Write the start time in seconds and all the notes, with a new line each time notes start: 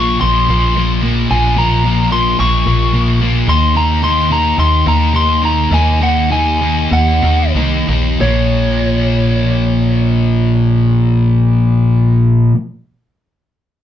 Already playing: A#1 A#2 F3 A#3 C#6
0.21 A#1 A#2 F3 A#3 C6
0.49 A#1 A#2 F3 A#3
0.76 A#2 F3 A#3
1.02 A#2 F3 A#3
1.30 A#1 A#2 F3 A#3 G#5
1.57 A#2 F3 A#3 A#5
1.84 A#2 F3 A#3
2.11 A#2 F3 A#3 C6
2.38 A#1 A#2 F3 A#3 C#6
2.66 A#1 A#2 F3 A#3
2.93 A#2 F3 A#3
3.21 A#2 F3 A#3
3.48 D#2 D#3 A#3 D#4 C6
3.75 D#3 A#3 D#4 A#5
4.03 D#3 A#3 D#4 C6
4.31 D#3 A#3 D#4 A#5
4.57 D#2 D#3 A#3 D#4 C6
4.86 D#2 D#3 A#3 D#4 A#5
5.13 D#3 A#3 D#4 C6
5.42 D#3 A#3 D#4 A#5
5.71 D#2 D#3 A#3 D#4 G#5
6.00 D#3 A#3 D#4 F#5
6.30 D#3 A#3 D#4 G#5
6.61 D#3 A#3 D#4
6.92 D#2 D#3 A#3 D#4 F#5
7.22 D#2 D#3 A#3 D#4
7.55 C2 D#3 A#3 D#4
7.87 A#1 D#3 A#3 D#4
8.19 A#1 A#2 F3 A#3 C#5